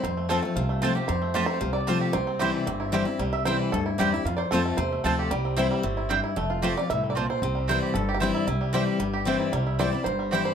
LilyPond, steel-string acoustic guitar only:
\new Staff \with { instrumentName = "Steel-string acoustic guitar" } { \time 4/4 \key c \major \tempo 4 = 228 << { r4 <f a c' f'>8 <c' f'>8 r4 <f a c' f'>8 <c' f'>8 | r4 <f a c' f'>4 r4 <f a c' f'>4 | r4 <e g c' e'>4 r4 <e g c' e'>8 <c' e'>8 | r4 <e g c' e'>4 r4 <e g c' e'>8 <c' e'>8 |
r4 <f a c' f'>4 r4 <f a c' f'>4 | r4 <e g c' e'>4 r2 | r4 <f a c' f'>8 <c' f'>8 r2 | r4 <e g c' e'>4 r4 <e g c' e'>4 |
r4 <e g c' e'>4 r4 <e g c' e'>4 | r4 <e g c' e'>8 <c' e'>8 r4 <e g c' e'>4 | } \\ { f,2 c2 | f,2 c2 | c2 g,2 | c2 g,2 |
f,2 c2 | c2 a,4 g,4 | f,2 a,4 bes,4 | c2 g,2 |
c2 g,2 | c2 g,2 | } >> }